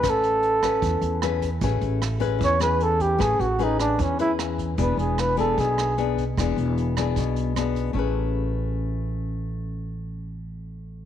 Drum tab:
HH |xxxxxxxx|xxxxxxxx|xxxxxxxx|xxxxxxxx|
SD |r--r--r-|--r--r--|r--r--r-|--r--r--|
BD |o--oo--o|o--oo--o|o--oo--o|o--oo--o|

HH |xxxxxxxx|--------|--------|
SD |r--r--r-|--------|--------|
BD |o--oo--o|--------|--------|